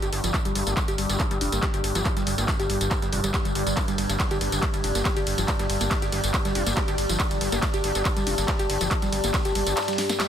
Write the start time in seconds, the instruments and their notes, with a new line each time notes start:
Already playing: synth drone G2, ambient pad G4 D5 A5
0.02 analog synth bass G1, synth arpeggio sound G4, closed hi-hat, tambourine
0.13 analog synth bass G1, closed hi-hat, open hi-hat
0.24 analog synth bass G1, synth arpeggio sound F3, closed hi-hat, tambourine
0.34 kick, clap, closed hi-hat, tambourine
0.45 analog synth bass G1, synth arpeggio sound G3, closed hi-hat, tambourine
0.55 analog synth bass G1, synth arpeggio sound G3, closed hi-hat, open hi-hat
0.67 analog synth bass G1, synth arpeggio sound A#3, closed hi-hat, tambourine
0.77 kick, snare, clap, closed hi-hat, tambourine
0.88 analog synth bass G1, synth arpeggio sound G4, closed hi-hat, tambourine
0.98 analog synth bass G1, synth arpeggio sound G3, closed hi-hat, open hi-hat
1.10 analog synth bass G1, closed hi-hat, tambourine
1.20 kick, clap, closed hi-hat, tambourine
1.31 analog synth bass G1, synth arpeggio sound G3, closed hi-hat, tambourine
1.41 analog synth bass F1, synth arpeggio sound D4, closed hi-hat, open hi-hat
1.52 analog synth bass G1, synth arpeggio sound A#3, snare, closed hi-hat, tambourine
1.62 synth arpeggio sound G4, kick, snare, clap, closed hi-hat, tambourine
1.74 analog synth bass G1, synth arpeggio sound G4, closed hi-hat, tambourine
1.84 analog synth bass G1, closed hi-hat, open hi-hat
1.95 analog synth bass G1, synth arpeggio sound F3, closed hi-hat, tambourine
2.05 kick, clap, closed hi-hat, tambourine
2.17 analog synth bass G1, synth arpeggio sound G3, snare, closed hi-hat, tambourine
2.27 analog synth bass G1, synth arpeggio sound G3, closed hi-hat, open hi-hat
2.38 analog synth bass G1, synth arpeggio sound A#3, closed hi-hat, tambourine
2.48 kick, snare, clap, closed hi-hat, tambourine
2.59 analog synth bass G1, synth arpeggio sound G4, snare, closed hi-hat, tambourine
2.70 analog synth bass G1, synth arpeggio sound G3, closed hi-hat, open hi-hat
2.81 analog synth bass G1, closed hi-hat, tambourine
2.91 kick, clap, closed hi-hat, tambourine
3.02 analog synth bass G1, synth arpeggio sound G3, snare, closed hi-hat, tambourine
3.12 analog synth bass F1, synth arpeggio sound G3, closed hi-hat, open hi-hat
3.24 analog synth bass G1, synth arpeggio sound G3, closed hi-hat, tambourine
3.34 synth arpeggio sound G4, kick, snare, clap, closed hi-hat, tambourine
3.45 analog synth bass G1, synth arpeggio sound G3, closed hi-hat, tambourine
3.55 analog synth bass G1, closed hi-hat, open hi-hat
3.67 analog synth bass G1, synth arpeggio sound G3, closed hi-hat, tambourine
3.77 kick, clap, closed hi-hat, ride, tambourine
3.88 analog synth bass G1, synth arpeggio sound G3, closed hi-hat, ride, tambourine
3.98 analog synth bass G1, synth arpeggio sound G3, closed hi-hat, open hi-hat, ride
4.10 analog synth bass G1, synth arpeggio sound A#3, closed hi-hat, ride, tambourine
4.20 kick, snare, clap, closed hi-hat, ride, tambourine
4.31 analog synth bass G1, synth arpeggio sound G4, closed hi-hat, ride, tambourine
4.41 analog synth bass G1, synth arpeggio sound G3, closed hi-hat, open hi-hat, ride
4.52 analog synth bass G1, closed hi-hat, ride, tambourine
4.62 kick, clap, closed hi-hat, ride, tambourine
4.74 analog synth bass G1, synth arpeggio sound G3, closed hi-hat, ride, tambourine
4.84 analog synth bass F1, synth arpeggio sound D4, closed hi-hat, open hi-hat, ride
4.95 analog synth bass G1, synth arpeggio sound A#3, snare, closed hi-hat, ride, tambourine
5.05 synth arpeggio sound G4, kick, snare, clap, closed hi-hat, ride, tambourine
5.17 analog synth bass G1, synth arpeggio sound G4, closed hi-hat, ride, tambourine
5.27 analog synth bass G1, closed hi-hat, open hi-hat, ride
5.38 analog synth bass G1, synth arpeggio sound F3, closed hi-hat, ride, tambourine
5.48 kick, clap, closed hi-hat, ride, tambourine
5.59 analog synth bass G1, synth arpeggio sound G3, snare, closed hi-hat, ride, tambourine
5.70 analog synth bass G1, synth arpeggio sound G3, closed hi-hat, open hi-hat, ride
5.81 analog synth bass G1, synth arpeggio sound A#3, closed hi-hat, ride, tambourine
5.91 kick, snare, clap, closed hi-hat, ride, tambourine
6.02 analog synth bass G1, synth arpeggio sound G4, snare, closed hi-hat, ride, tambourine
6.12 analog synth bass G1, synth arpeggio sound G3, closed hi-hat, open hi-hat, ride
6.24 analog synth bass G1, closed hi-hat, ride, tambourine
6.34 kick, clap, closed hi-hat, ride
6.45 analog synth bass G1, synth arpeggio sound G3, snare, closed hi-hat, ride, tambourine
6.55 analog synth bass F1, synth arpeggio sound D4, closed hi-hat, open hi-hat, ride
6.67 analog synth bass G1, synth arpeggio sound A#3, closed hi-hat, ride, tambourine
6.77 synth arpeggio sound G4, kick, snare, clap, closed hi-hat, ride
6.88 analog synth bass G1, synth arpeggio sound G4, closed hi-hat, ride, tambourine
6.98 analog synth bass G1, closed hi-hat, open hi-hat, ride
7.09 analog synth bass G1, synth arpeggio sound F3, closed hi-hat, ride, tambourine
7.20 kick, clap, closed hi-hat, ride
7.31 analog synth bass G1, synth arpeggio sound G3, closed hi-hat, ride, tambourine
7.41 analog synth bass G1, synth arpeggio sound G3, closed hi-hat, open hi-hat, ride
7.52 analog synth bass G1, synth arpeggio sound A#3, closed hi-hat, ride, tambourine
7.62 kick, snare, clap, closed hi-hat, ride, tambourine
7.74 analog synth bass G1, synth arpeggio sound G4, closed hi-hat, ride, tambourine
7.84 analog synth bass G1, synth arpeggio sound G3, closed hi-hat, open hi-hat, ride
7.95 analog synth bass G1, closed hi-hat, ride, tambourine
8.05 kick, clap, closed hi-hat, ride, tambourine
8.17 analog synth bass G1, synth arpeggio sound G3, closed hi-hat, ride, tambourine
8.27 analog synth bass F1, synth arpeggio sound D4, closed hi-hat, open hi-hat, ride
8.38 analog synth bass G1, synth arpeggio sound A#3, snare, closed hi-hat, ride, tambourine
8.48 synth arpeggio sound G4, kick, snare, clap, closed hi-hat, ride, tambourine
8.59 analog synth bass G1, synth arpeggio sound G4, closed hi-hat, ride, tambourine
8.70 analog synth bass G1, closed hi-hat, open hi-hat, ride
8.81 analog synth bass G1, synth arpeggio sound F3, closed hi-hat, ride, tambourine
8.91 kick, clap, closed hi-hat, ride
9.02 analog synth bass G1, synth arpeggio sound G3, snare, closed hi-hat, ride, tambourine
9.12 analog synth bass G1, synth arpeggio sound G3, closed hi-hat, open hi-hat, ride
9.24 analog synth bass G1, synth arpeggio sound A#3, closed hi-hat, ride, tambourine
9.34 kick, snare, clap, closed hi-hat, ride, tambourine
9.45 analog synth bass G1, synth arpeggio sound G4, snare, closed hi-hat, ride, tambourine
9.55 analog synth bass G1, synth arpeggio sound G3, closed hi-hat, open hi-hat, ride
9.67 analog synth bass G1, closed hi-hat, ride, tambourine
9.77 snare, clap, closed hi-hat, ride, tambourine
9.82 snare, closed hi-hat
9.88 synth arpeggio sound G3, snare, closed hi-hat, ride, tambourine
9.93 snare, closed hi-hat
9.98 synth arpeggio sound D4, snare, closed hi-hat, open hi-hat, ride
10.09 synth arpeggio sound A#3, snare, closed hi-hat, ride, tambourine
10.20 synth arpeggio sound G4, snare, clap, closed hi-hat, ride, tambourine